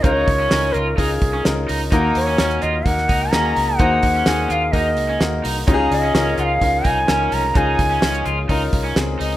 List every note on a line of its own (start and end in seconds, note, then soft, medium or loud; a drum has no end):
0.00 0.04 C#3 medium
0.00 0.71 C#3 medium
0.00 0.03 C#4 medium
0.00 0.42 C#4 medium
0.00 0.04 D#4 loud
0.00 0.42 D#4 medium
0.00 0.26 D#4 loud
0.00 0.04 F4 medium
0.00 1.93 G#4 loud
0.00 0.04 A#4 medium
0.00 0.74 C#5 loud
0.00 hi-hat pedal medium
0.00 open hi-hat medium
0.04 0.23 C#2 loud
0.04 0.42 F4 medium
0.04 0.42 A#4 loud
0.04 kick loud
0.28 0.47 C#2 loud
0.28 kick loud
0.28 hi-hat pedal medium
0.28 open hi-hat medium
0.40 0.50 C#4 medium
0.50 0.71 C#2 loud
0.50 0.89 C#4 medium
0.50 0.73 C#4 medium
0.50 0.89 D#4 medium
0.50 0.89 F4 medium
0.50 0.89 A#4 medium
0.50 snare loud
0.50 hi-hat pedal medium
0.50 open hi-hat medium
0.73 0.94 C#2 loud
0.73 0.85 F4 medium
0.73 0.99 A#4 medium
0.73 hi-hat pedal medium
0.73 open hi-hat medium
0.97 1.17 C#2 loud
0.97 1.36 C#4 medium
0.97 1.09 D#4 medium
0.97 1.36 D#4 medium
0.97 1.36 F4 medium
0.97 1.68 G#4 medium
0.97 1.36 A#4 medium
0.97 kick medium
0.97 hi-hat pedal medium
0.97 open hi-hat medium
1.22 1.41 C2 medium
1.22 kick loud
1.22 hi-hat pedal medium
1.22 open hi-hat medium
1.33 1.44 C#4 medium
1.44 1.65 C#2 loud
1.44 1.83 C#4 medium
1.44 1.83 D#4 medium
1.44 1.83 F4 medium
1.44 1.83 A#4 medium
1.44 snare loud
1.44 hi-hat pedal medium
1.44 open hi-hat medium
1.68 1.88 C#2 medium
1.68 1.79 D#4 medium
1.68 hi-hat pedal medium
1.68 open hi-hat medium
1.91 2.11 D#2 loud
1.91 2.58 D#3 medium
1.91 2.30 A#3 loud
1.91 2.14 D#4 loud
1.91 2.30 D#4 loud
1.91 2.30 F#4 medium
1.91 2.30 A#4 loud
1.91 kick loud
1.91 hi-hat pedal medium
1.91 open hi-hat medium
2.15 2.35 D#2 medium
2.15 2.64 C#5 loud
2.15 hi-hat pedal medium
2.15 open hi-hat medium
2.27 2.38 C#4 medium
2.27 open hi-hat soft
2.38 2.59 D#2 loud
2.38 2.77 A#3 medium
2.38 2.61 C#4 medium
2.38 2.77 D#4 medium
2.38 2.77 F#4 medium
2.38 2.77 A#4 medium
2.38 snare loud
2.38 hi-hat pedal medium
2.38 open hi-hat medium
2.50 hi-hat pedal medium
2.62 2.82 D#2 loud
2.62 2.73 F4 medium
2.62 2.87 D#5 loud
2.62 hi-hat pedal medium
2.62 open hi-hat medium
2.86 3.05 D#2 loud
2.86 3.24 A#3 medium
2.86 3.24 D#4 medium
2.86 3.24 F#4 medium
2.86 3.24 A#4 medium
2.86 3.32 F#5 loud
2.86 kick medium
2.86 hi-hat pedal medium
2.86 open hi-hat medium
2.98 snare soft
3.09 3.29 C#2 medium
3.09 3.20 D#4 medium
3.09 kick loud
3.09 hi-hat pedal medium
3.09 open hi-hat medium
3.31 3.52 D#2 loud
3.31 3.71 A#3 medium
3.31 3.66 C#4 medium
3.31 3.71 D#4 medium
3.31 3.71 F#4 medium
3.31 3.71 G#4 medium
3.31 3.79 A#5 loud
3.31 snare loud
3.31 hi-hat pedal medium
3.31 open hi-hat medium
3.56 3.76 C#2 medium
3.56 hi-hat pedal medium
3.56 open hi-hat medium
3.77 3.99 D#2 medium
3.77 4.46 D#3 medium
3.77 4.18 A#3 medium
3.77 4.18 D#4 medium
3.77 4.02 D#4 loud
3.77 4.18 F#4 medium
3.77 4.18 C5 loud
3.77 4.48 F#5 loud
3.77 kick loud
3.77 hi-hat pedal medium
3.77 open hi-hat medium
4.03 4.22 D#2 medium
4.03 kick medium
4.03 hi-hat pedal medium
4.03 open hi-hat medium
4.15 4.25 C#4 medium
4.26 4.46 D#2 loud
4.26 4.65 A#3 medium
4.26 4.49 C#4 medium
4.26 4.65 D#4 medium
4.26 4.65 F#4 medium
4.26 4.65 G#4 medium
4.26 snare loud
4.26 hi-hat pedal medium
4.26 open hi-hat medium
4.48 4.69 D#2 medium
4.48 4.61 F4 medium
4.48 4.73 F5 medium
4.48 4.52 F#5 medium
4.48 hi-hat pedal medium
4.48 open hi-hat medium
4.72 4.97 D#2 medium
4.72 5.11 A#3 medium
4.72 5.11 D#4 medium
4.72 4.85 D#4 medium
4.72 5.12 F#4 medium
4.72 5.11 A#4 medium
4.72 5.43 D#5 medium
4.72 kick medium
4.72 hi-hat pedal medium
4.72 open hi-hat medium
4.97 5.16 C#2 medium
4.97 hi-hat pedal medium
4.97 open hi-hat medium
5.09 5.20 C#4 medium
5.20 5.40 D#2 loud
5.20 5.58 A#3 medium
5.20 5.59 D#4 medium
5.20 5.59 F#4 medium
5.20 5.59 A#4 medium
5.20 snare loud
5.20 hi-hat pedal medium
5.20 open hi-hat medium
5.44 5.64 C2 medium
5.44 5.55 D#4 medium
5.44 hi-hat pedal medium
5.44 open hi-hat medium
5.66 5.87 C#2 loud
5.66 9.37 C#3 medium
5.66 6.34 C#3 medium
5.66 9.37 F3 medium
5.66 9.37 G#3 medium
5.66 6.06 C#4 loud
5.66 9.37 D#4 medium
5.66 6.06 D#4 medium
5.66 5.90 D#4 loud
5.66 6.06 F4 medium
5.66 5.73 G4 medium
5.66 kick loud
5.66 hi-hat pedal medium
5.66 open hi-hat medium
5.74 6.09 G#4 loud
5.91 6.11 C#2 loud
5.91 6.35 D#5 medium
5.91 hi-hat pedal medium
5.91 open hi-hat medium
6.04 6.14 C#4 medium
6.15 6.34 C#2 loud
6.15 6.53 C#4 medium
6.15 6.37 C#4 medium
6.15 6.53 D#4 medium
6.15 6.53 F4 medium
6.15 6.53 A#4 medium
6.15 snare loud
6.15 hi-hat pedal medium
6.15 open hi-hat medium
6.38 6.57 C#2 medium
6.38 6.50 F4 medium
6.38 6.44 F#5 medium
6.38 hi-hat pedal medium
6.38 open hi-hat medium
6.43 6.88 F5 loud
6.61 6.81 C#2 loud
6.61 7.00 C#4 medium
6.61 7.00 D#4 medium
6.61 7.00 F4 medium
6.61 7.00 A#4 medium
6.61 kick medium
6.61 hi-hat pedal medium
6.61 open hi-hat medium
6.85 7.04 C2 medium
6.85 6.96 D#4 medium
6.85 7.35 G#5 loud
6.85 kick medium
6.85 hi-hat pedal medium
6.85 open hi-hat medium
7.08 7.28 C#2 medium
7.08 7.47 C#4 medium
7.08 7.42 C#4 medium
7.08 7.47 D#4 medium
7.08 7.47 F4 medium
7.08 7.47 A#4 medium
7.08 snare loud
7.08 hi-hat pedal medium
7.08 open hi-hat medium
7.32 7.51 C2 loud
7.32 7.59 A#5 loud
7.32 hi-hat pedal medium
7.32 open hi-hat medium
7.55 7.75 C#2 loud
7.55 8.22 C#3 medium
7.55 7.94 C#4 medium
7.55 7.78 D#4 loud
7.55 7.94 D#4 medium
7.55 7.94 F4 medium
7.55 7.94 G#4 loud
7.55 8.27 G#5 loud
7.55 kick loud
7.55 hi-hat pedal medium
7.55 open hi-hat medium
7.79 7.98 C#2 medium
7.79 kick medium
7.79 hi-hat pedal medium
7.79 open hi-hat medium
7.91 8.01 C#4 medium
7.91 open hi-hat soft
8.02 8.22 C#2 loud
8.02 8.25 C#4 medium
8.02 8.41 C#4 medium
8.02 8.41 D#4 medium
8.02 8.41 F4 medium
8.02 8.41 G#4 medium
8.02 snare loud
8.02 hi-hat pedal medium
8.02 open hi-hat medium
8.14 hi-hat pedal medium
8.26 8.45 C#2 loud
8.26 8.37 F4 medium
8.26 hi-hat pedal medium
8.26 open hi-hat medium
8.49 8.69 C#2 loud
8.49 8.88 C#4 medium
8.49 8.61 D#4 medium
8.49 8.88 D#4 medium
8.49 8.88 F4 medium
8.49 8.88 A#4 medium
8.49 kick medium
8.49 hi-hat pedal medium
8.49 open hi-hat medium
8.73 8.92 C2 medium
8.73 kick loud
8.73 hi-hat pedal medium
8.73 open hi-hat medium
8.85 8.96 C#4 medium
8.96 9.16 C#2 loud
8.96 9.19 C4 medium
8.96 9.19 G#4 medium
8.96 snare loud
8.96 hi-hat pedal medium
8.96 open hi-hat medium
9.19 9.37 C#2 loud
9.19 9.31 D#4 medium
9.19 9.37 D#5 medium
9.19 hi-hat pedal medium
9.19 open hi-hat medium
9.32 open hi-hat soft